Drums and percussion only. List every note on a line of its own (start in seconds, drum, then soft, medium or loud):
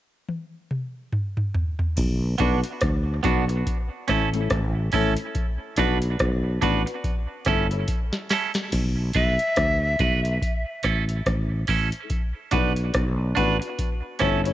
0.29 high tom medium
0.71 mid tom medium
1.13 mid tom medium
1.37 mid tom medium
1.55 floor tom medium
1.79 floor tom loud
1.97 kick loud
1.97 crash medium
1.97 cabasa medium
2.38 kick medium
2.38 closed hi-hat medium
2.64 closed hi-hat medium
2.81 kick loud
2.81 cross-stick loud
2.81 closed hi-hat medium
3.24 kick loud
3.24 closed hi-hat medium
3.49 closed hi-hat medium
3.66 kick medium
3.66 closed hi-hat medium
4.08 kick medium
4.08 cross-stick medium
4.08 closed hi-hat medium
4.33 closed hi-hat soft
4.50 kick loud
4.50 cross-stick loud
4.50 closed hi-hat medium
4.92 kick medium
4.92 open hi-hat medium
5.16 closed hi-hat medium
5.35 kick loud
5.35 closed hi-hat medium
5.76 kick loud
5.76 closed hi-hat medium
6.02 closed hi-hat medium
6.19 kick loud
6.19 cross-stick loud
6.19 closed hi-hat medium
6.62 kick loud
6.62 closed hi-hat medium
6.87 closed hi-hat medium
7.04 kick loud
7.04 closed hi-hat medium
7.45 kick medium
7.45 cross-stick medium
7.45 closed hi-hat medium
7.71 closed hi-hat medium
7.88 kick loud
7.88 closed hi-hat medium
8.13 snare medium
8.29 snare medium
8.29 open hi-hat medium
8.54 snare medium
8.54 closed hi-hat medium
8.72 kick loud
8.72 closed hi-hat medium
8.72 crash medium
9.13 kick loud
9.13 closed hi-hat medium
9.39 closed hi-hat medium
9.56 kick loud
9.56 cross-stick medium
9.56 closed hi-hat medium
9.99 kick loud
9.99 closed hi-hat medium
10.25 closed hi-hat medium
10.42 kick loud
10.42 closed hi-hat medium
10.83 kick medium
10.83 cross-stick medium
10.83 closed hi-hat medium
11.09 closed hi-hat medium
11.26 kick loud
11.26 cross-stick medium
11.26 closed hi-hat medium
11.67 kick medium
11.67 open hi-hat medium
11.92 closed hi-hat medium
12.10 kick loud
12.10 closed hi-hat medium
12.51 kick loud
12.51 closed hi-hat medium
12.76 closed hi-hat medium
12.94 kick loud
12.94 cross-stick loud
12.94 closed hi-hat medium
13.37 kick medium
13.37 closed hi-hat medium
13.62 closed hi-hat medium
13.79 kick medium
13.79 closed hi-hat medium
14.19 kick medium
14.19 cross-stick medium
14.19 closed hi-hat medium
14.46 closed hi-hat medium